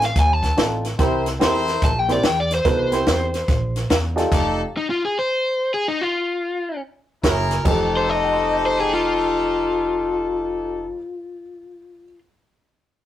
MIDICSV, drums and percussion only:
0, 0, Header, 1, 2, 480
1, 0, Start_track
1, 0, Tempo, 416378
1, 1141, Time_signature, 4, 2, 24, 8
1, 15044, End_track
2, 0, Start_track
2, 0, Title_t, "Drums"
2, 20, Note_on_c, 9, 42, 59
2, 26, Note_on_c, 9, 38, 33
2, 135, Note_off_c, 9, 42, 0
2, 141, Note_off_c, 9, 38, 0
2, 180, Note_on_c, 9, 42, 88
2, 182, Note_on_c, 9, 36, 99
2, 186, Note_on_c, 9, 38, 33
2, 296, Note_off_c, 9, 42, 0
2, 297, Note_off_c, 9, 36, 0
2, 301, Note_off_c, 9, 38, 0
2, 493, Note_on_c, 9, 36, 74
2, 499, Note_on_c, 9, 42, 55
2, 505, Note_on_c, 9, 38, 34
2, 608, Note_off_c, 9, 36, 0
2, 614, Note_off_c, 9, 42, 0
2, 620, Note_off_c, 9, 38, 0
2, 663, Note_on_c, 9, 42, 74
2, 669, Note_on_c, 9, 38, 97
2, 778, Note_off_c, 9, 42, 0
2, 784, Note_off_c, 9, 38, 0
2, 975, Note_on_c, 9, 42, 60
2, 981, Note_on_c, 9, 38, 31
2, 1090, Note_off_c, 9, 42, 0
2, 1096, Note_off_c, 9, 38, 0
2, 1139, Note_on_c, 9, 42, 82
2, 1140, Note_on_c, 9, 36, 103
2, 1145, Note_on_c, 9, 38, 32
2, 1254, Note_off_c, 9, 42, 0
2, 1256, Note_off_c, 9, 36, 0
2, 1260, Note_off_c, 9, 38, 0
2, 1452, Note_on_c, 9, 42, 64
2, 1458, Note_on_c, 9, 38, 34
2, 1568, Note_off_c, 9, 42, 0
2, 1573, Note_off_c, 9, 38, 0
2, 1624, Note_on_c, 9, 42, 75
2, 1630, Note_on_c, 9, 38, 100
2, 1740, Note_off_c, 9, 42, 0
2, 1745, Note_off_c, 9, 38, 0
2, 1932, Note_on_c, 9, 42, 56
2, 1938, Note_on_c, 9, 38, 32
2, 2047, Note_off_c, 9, 42, 0
2, 2053, Note_off_c, 9, 38, 0
2, 2096, Note_on_c, 9, 42, 76
2, 2099, Note_on_c, 9, 36, 102
2, 2102, Note_on_c, 9, 38, 33
2, 2212, Note_off_c, 9, 42, 0
2, 2214, Note_off_c, 9, 36, 0
2, 2217, Note_off_c, 9, 38, 0
2, 2410, Note_on_c, 9, 42, 58
2, 2416, Note_on_c, 9, 38, 34
2, 2526, Note_off_c, 9, 42, 0
2, 2531, Note_off_c, 9, 38, 0
2, 2572, Note_on_c, 9, 42, 71
2, 2578, Note_on_c, 9, 38, 98
2, 2687, Note_off_c, 9, 42, 0
2, 2693, Note_off_c, 9, 38, 0
2, 2888, Note_on_c, 9, 42, 59
2, 2894, Note_on_c, 9, 38, 34
2, 3004, Note_off_c, 9, 42, 0
2, 3009, Note_off_c, 9, 38, 0
2, 3054, Note_on_c, 9, 42, 77
2, 3055, Note_on_c, 9, 36, 113
2, 3059, Note_on_c, 9, 38, 32
2, 3169, Note_off_c, 9, 42, 0
2, 3170, Note_off_c, 9, 36, 0
2, 3175, Note_off_c, 9, 38, 0
2, 3364, Note_on_c, 9, 42, 61
2, 3370, Note_on_c, 9, 38, 34
2, 3479, Note_off_c, 9, 42, 0
2, 3485, Note_off_c, 9, 38, 0
2, 3532, Note_on_c, 9, 42, 74
2, 3538, Note_on_c, 9, 38, 100
2, 3647, Note_off_c, 9, 42, 0
2, 3653, Note_off_c, 9, 38, 0
2, 3847, Note_on_c, 9, 42, 57
2, 3853, Note_on_c, 9, 38, 33
2, 3962, Note_off_c, 9, 42, 0
2, 3968, Note_off_c, 9, 38, 0
2, 4012, Note_on_c, 9, 42, 76
2, 4014, Note_on_c, 9, 36, 104
2, 4018, Note_on_c, 9, 38, 34
2, 4127, Note_off_c, 9, 42, 0
2, 4130, Note_off_c, 9, 36, 0
2, 4133, Note_off_c, 9, 38, 0
2, 4331, Note_on_c, 9, 42, 56
2, 4336, Note_on_c, 9, 38, 30
2, 4446, Note_off_c, 9, 42, 0
2, 4452, Note_off_c, 9, 38, 0
2, 4496, Note_on_c, 9, 42, 86
2, 4502, Note_on_c, 9, 38, 107
2, 4611, Note_off_c, 9, 42, 0
2, 4617, Note_off_c, 9, 38, 0
2, 4813, Note_on_c, 9, 42, 64
2, 4819, Note_on_c, 9, 38, 32
2, 4928, Note_off_c, 9, 42, 0
2, 4934, Note_off_c, 9, 38, 0
2, 4976, Note_on_c, 9, 36, 115
2, 4980, Note_on_c, 9, 42, 90
2, 4980, Note_on_c, 9, 49, 78
2, 4986, Note_on_c, 9, 38, 35
2, 5091, Note_off_c, 9, 36, 0
2, 5095, Note_off_c, 9, 42, 0
2, 5095, Note_off_c, 9, 49, 0
2, 5101, Note_off_c, 9, 38, 0
2, 8340, Note_on_c, 9, 36, 74
2, 8342, Note_on_c, 9, 42, 79
2, 8348, Note_on_c, 9, 38, 94
2, 8455, Note_off_c, 9, 36, 0
2, 8457, Note_off_c, 9, 42, 0
2, 8463, Note_off_c, 9, 38, 0
2, 8653, Note_on_c, 9, 42, 59
2, 8659, Note_on_c, 9, 38, 34
2, 8769, Note_off_c, 9, 42, 0
2, 8774, Note_off_c, 9, 38, 0
2, 8821, Note_on_c, 9, 36, 101
2, 8822, Note_on_c, 9, 49, 86
2, 8937, Note_off_c, 9, 36, 0
2, 8938, Note_off_c, 9, 49, 0
2, 15044, End_track
0, 0, End_of_file